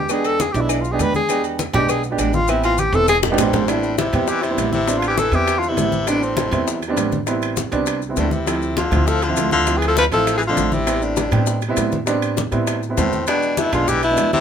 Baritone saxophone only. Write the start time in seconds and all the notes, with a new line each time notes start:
3.31 G#2
3.38 G#2
3.68 A2
3.99 C3
4.29 E3
4.44 C3
4.74 C3
4.99 D3
5.09 E3
5.19 E3
5.32 E3
5.58 D3
5.68 C3
6.09 A2
6.24 A2
8.19 A2
8.33 C3
8.78 D3
9.08 F3
9.23 D3
9.52 D3
9.77 E3
9.88 F3
9.98 F3
10.13 F3
10.38 E3
10.49 D3
10.74 C3
11.04 A2
12.97 A2
13.27 B2
13.58 B2
13.73 D3
13.88 E3
14.04 B2
14.34 C3